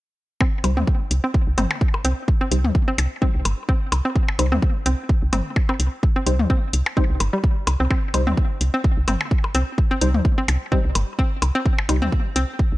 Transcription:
0.41 C4, kick, percussion blips
0.64 C2 G3 D#4 C5, closed hi-hat, percussion blips
0.77 D#2 C4, mid tom
0.87 kick
1.11 C2, closed hi-hat
1.24 C4
1.34 kick
1.47 C2
1.58 G1 C4, closed hi-hat, mid tom, percussion blips
1.71 percussion blips
1.81 kick
1.94 percussion blips
2.05 C2 C4, closed hi-hat
2.28 kick
2.41 C4
2.51 C2 G3 D#4 C5, closed hi-hat
2.64 D#2, mid tom
2.75 kick
2.88 C4
2.98 C2, closed hi-hat, percussion blips
3.22 G3 C4 D#4 C5, kick
3.35 C2
3.45 G1, closed hi-hat, percussion blips
3.69 C4, kick
3.92 C2, closed hi-hat, percussion blips
4.05 C4
4.16 kick
4.28 percussion blips
4.39 C2 G3 D#4 C5, closed hi-hat, percussion blips
4.52 D#2 C4, mid tom
4.62 kick
4.86 C2 C4, closed hi-hat
5.09 kick
5.22 C2
5.33 G1 C4, closed hi-hat, mid tom, percussion blips
5.56 kick, percussion blips
5.69 C4, percussion blips
5.80 C2, closed hi-hat
6.03 kick
6.16 C4
6.26 C2 G3 D#4 C5, closed hi-hat
6.39 D#2, mid tom
6.50 C4, kick
6.73 C2, closed hi-hat
6.86 percussion blips
6.97 G3 C4 D#4 C5, kick
7.10 C2
7.20 G1, closed hi-hat, percussion blips
7.33 G3
7.44 kick
7.67 C2, closed hi-hat, percussion blips
7.80 C2 C4
7.91 C4, kick, percussion blips
8.14 C2 G3 D#4 C5, closed hi-hat, percussion blips
8.27 D#2 C4, mid tom
8.37 kick
8.61 C2, closed hi-hat
8.74 C4
8.84 kick
8.97 C2
9.08 G1 C4, closed hi-hat, mid tom, percussion blips
9.21 percussion blips
9.31 kick
9.44 percussion blips
9.55 C2 C4, closed hi-hat
9.78 kick
9.91 C4
10.01 C2 G3 D#4 C5, closed hi-hat
10.14 D#2, mid tom
10.25 kick
10.38 C4
10.48 C2, closed hi-hat, percussion blips
10.72 G3 C4 D#4 C5, kick
10.85 C2
10.95 G1, closed hi-hat, percussion blips
11.19 C4, kick
11.42 C2, closed hi-hat, percussion blips
11.55 C4
11.66 kick
11.79 percussion blips
11.89 C2 G3 D#4 C5, closed hi-hat, percussion blips
12.02 D#2 C4, mid tom
12.12 kick
12.36 C2 C4, closed hi-hat
12.59 kick
12.72 C2

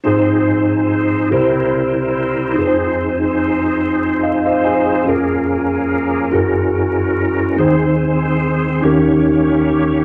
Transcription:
0.04 G#2 F3 C4 D#4 F4 G#4 C5
1.30 C2 C3 G3 E4 G4 A#4 C5
2.53 F3 D#4 F4 G#4
2.57 F2 G#4 B4
2.67 C5
4.23 D#5 F5
4.46 C5 D#5 F5
4.65 G#4 C5 G#5
4.86 F4 G#4
5.05 F2 A#3 C#4 F4 G#4 A#4
6.31 F#2 E3 G#3 E4 F#4 G#4 A#4
7.56 D#2 D#3 C4 D#4 G#4 C5
8.82 D#2 D#3 A#3 C#4 D#4 G4 A#4 C#5

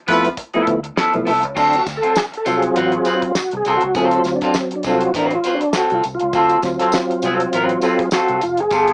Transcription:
0.07 F2 F3 A3 B3 E4 F4 A4 B4, kick, closed hi-hat
0.24 muted clean electric guitar stroke, closed hi-hat
0.37 muted clean electric guitar stroke, kick, closed hi-hat
0.54 F3 A3 B3 E4 A4, muted fingered electric bass stroke, closed hi-hat
0.67 D2, muted clean electric guitar stroke, kick, closed hi-hat
0.83 muted clean electric guitar stroke, closed hi-hat
0.96 F3 B3 E4 A4, snare
1.13 B1 F3 A3 B3 E4, muted clean electric guitar stroke, closed hi-hat
1.25 C2 F3 B3 E4 A4, open hi-hat
1.43 C#2, muted clean electric guitar stroke, closed hi-hat
1.55 D2 F#3 C4 D4 F4 A4, kick, crash, tambourine
1.73 closed hi-hat
1.78 F#4
1.86 D2, muted clean electric guitar stroke, kick, snare, closed hi-hat, tambourine
1.97 A4
2.02 F#3 C4 F4 A4, closed hi-hat
2.15 G#4, muted clean electric guitar stroke, snare, tambourine
2.32 muted clean electric guitar stroke, closed hi-hat
2.37 A4
2.45 C2 F#3 C4 F4 A4, closed hi-hat, tambourine
2.57 G#4
2.62 muted clean electric guitar stroke, closed hi-hat
2.76 A1 F#3 C4 F4 F#4 B4, closed hi-hat
2.92 muted clean electric guitar stroke, closed hi-hat
2.97 G#4
3.05 F#3 C4 F4 B4, closed hi-hat, tambourine
3.17 F4
3.22 muted clean electric guitar stroke, kick, closed hi-hat
3.35 F#4, snare, tambourine
3.51 C2, muted clean electric guitar stroke, closed hi-hat
3.57 G#4
3.65 C2 F#3 C4 F4 A4, closed hi-hat, tambourine
3.77 F#4, closed hi-hat
3.82 C#2, muted clean electric guitar stroke
3.95 D2 F#3 C4 F4 A4, kick, closed hi-hat, tambourine
4.11 closed hi-hat
4.16 F4
4.24 D2, muted clean electric guitar stroke, snare, closed hi-hat, tambourine
4.36 D4
4.41 F#3 C4 F4 A4, kick, snare, closed hi-hat
4.54 C4, snare, tambourine
4.71 muted clean electric guitar stroke, closed hi-hat
4.76 D4
4.83 C2 F#3 C4 F4 A4, kick, closed hi-hat, tambourine
4.95 F#4
5.01 muted clean electric guitar stroke, closed hi-hat
5.14 A1 F#3 C4 D4 F4 B4, kick, closed hi-hat, tambourine
5.31 muted clean electric guitar stroke, closed hi-hat
5.35 F4
5.44 F#3 C4 F4 B4, closed hi-hat, tambourine
5.55 D4
5.61 muted clean electric guitar stroke, closed hi-hat
5.73 F#3 C4 F4 F#4 A4, snare, tambourine
5.90 C2, closed hi-hat
5.95 F4
6.03 C2, muted clean electric guitar stroke, closed hi-hat, tambourine
6.15 F4
6.19 C#2, muted clean electric guitar stroke, closed hi-hat
6.33 D2 F#3 C4 F4 A4, kick, closed hi-hat, tambourine
6.49 closed hi-hat
6.62 D2 F#3 C4 F4, muted clean electric guitar stroke, kick, snare, closed hi-hat, tambourine
6.79 F#3 C4 F4 A4, snare, closed hi-hat
6.92 muted clean electric guitar stroke, snare, tambourine
7.10 muted clean electric guitar stroke, closed hi-hat
7.22 C2 F#3 C4 F4 A4, closed hi-hat, tambourine
7.40 muted clean electric guitar stroke, closed hi-hat
7.53 A1 F#3 C4 F4 B4, closed hi-hat, tambourine
7.69 muted clean electric guitar stroke, closed hi-hat
7.81 F#3 C4 F4 A4 B4, closed hi-hat, tambourine
7.99 G#4, muted clean electric guitar stroke, kick, closed hi-hat
8.11 F#3 C4 F4 F#4 A4, snare, tambourine
8.28 C2, closed hi-hat
8.41 F1 F4, muted clean electric guitar stroke, closed hi-hat, tambourine
8.57 F#1 G#4, muted clean electric guitar stroke, closed hi-hat
8.71 G1 G3 B3 F4 A4, kick, closed hi-hat, tambourine
8.87 closed hi-hat

